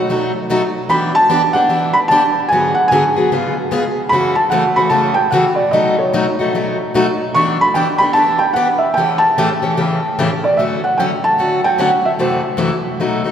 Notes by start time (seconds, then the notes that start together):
Already playing: C#5
0.09 B2 F#3 A3 D#4 F#4
0.50 B2 F#3 A3 D#4 F#4
0.89 E3 B3 D4 G4 B5
1.15 A5
1.29 E3 B3 D4 G4
1.53 B3 D4 G4 F#5
1.69 E3 B3 D4 G4
1.93 B5
2.08 E3 B3 D4 G4 A5
2.49 G#2 D3 G#5
2.53 F#3 B3 F#4 G#4
2.75 F#5
2.88 G#2 F#3 G#5
2.92 D3 B3 F#4 G#4
3.16 F#3 B3 F#4 G#4
3.32 C#3 G#3 B3 F4 G#4
3.71 C#3 G#3 B3 F4 G#4
4.09 F#2 C#3 E3 A3 C#4 B5
4.13 F#4
4.35 A5
4.50 F#2 C#3 E3 A3 C#4 F#4 F#5
4.76 E3 A3 C#4 F#4 B5
4.89 F#2 C#3 E3 A3 C#4 F#4 A5
5.14 G5
5.31 F#2 C#3 E3 A3 C#4 F#4 F#5
5.55 D5
5.71 B2 F#3 A3 D#4 F#4 D#5
5.98 C#5
6.13 B2 F#3 A3 D#4 F#4
6.39 A3 D#4 F#4
6.55 B2 F#3 A3 D#4 F#4
6.94 B2 F#3 A3 D#4 F#4
7.34 E3 B3 D4 G4 C#6
7.61 B5
7.74 E3 B3 D4 G4 G5
7.98 D4 G4 B5
8.03 B3
8.13 E3 B3 D4 G4 A5
8.39 G5
8.53 E3 B3 D4 G4 F#5
8.78 E5
8.94 A2 C#3 E3 A3 G4 G5
8.98 C#4
9.18 A5
9.38 A2 C#3 E3 A3 C#4 G4
9.62 E3 A3 C#4 G4
9.77 A2 C#3 E3 A3 C#4 G4
10.19 A2 C#3 E3 A3 C#4 G4
10.44 D5
10.57 D3 F#3 A3 C#4 F#4 E5
10.84 F#5
10.98 D3 F#3 A3 C#4 F#4 G5
11.24 A5
11.38 D3 F#3 A3 C#4 F#4
11.64 A3 C#4 F#4 G5
11.78 D3 F#3 A3 C#4 F#4 F#5
12.05 E5
12.19 F#2 C3 E3 A3 E4 F#4 C5
12.57 F#2 C3 E3 A3 E4 F#4
13.00 B2 F#3 A3 D#4 F#4
13.24 A3 D#4 F#4